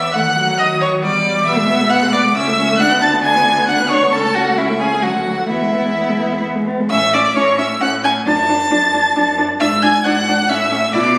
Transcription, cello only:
Already playing: E2
0.14 D#2
0.58 D#3
1.02 E2
1.47 B2
2.36 C#2
2.79 D2
4.12 C#2
5.03 D2
5.49 E2
6.91 A2
7.36 A2
7.81 A2
8.26 F#2
8.71 F#2
9.15 F#2
9.60 G#2
10.04 G#2
10.49 A2
10.95 B2

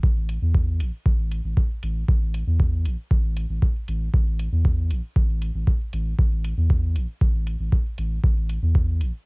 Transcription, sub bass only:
0.03 A1
0.42 E2
0.80 A1
1.06 A1
1.44 A1
1.83 A1
2.08 A1
2.47 E2
2.85 A1
3.11 A1
3.50 A1
3.88 A1
4.14 A1
4.52 E2
4.91 A1
5.16 A1
5.55 A1
5.93 A1
6.19 A1
6.57 E2
6.96 A1
7.21 A1
7.60 A1
7.98 A1
8.24 A1
8.62 E2
9.01 A1

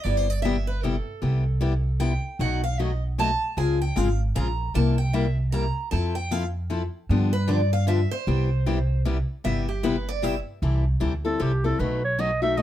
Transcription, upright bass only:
0.05 G1
1.22 C2
2.39 B1
3.57 C#2
3.97 G#1
4.36 A#1
4.75 C2
5.92 F2
7.09 G2
8.27 C2
9.45 G1
10.62 C2
11.02 D2
11.40 C2
11.79 B1

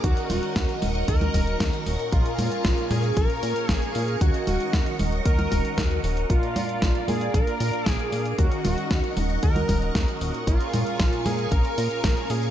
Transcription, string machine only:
Already playing: A#4
0.04 D#5 F#5 C#6
2.13 F5 G#5
4.21 D#5 F#5
6.30 D5 F5 D6
8.39 D#5 F#5 C#6
10.47 A#4 F5 G#5 C#6

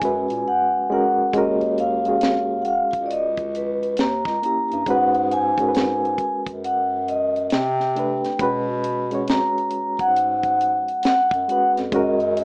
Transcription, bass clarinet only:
0.02 F#2
0.29 A#2
1.34 D#2
2.67 C#2
2.94 C#2
3.99 D#2
4.26 C#2
4.71 G2
4.87 G#2
6.19 F#2
6.47 F#2
7.52 C3
8.40 B2
9.73 G#2
10.00 G#2
11.05 F#2
11.32 F#2
11.77 F2
11.93 F#2

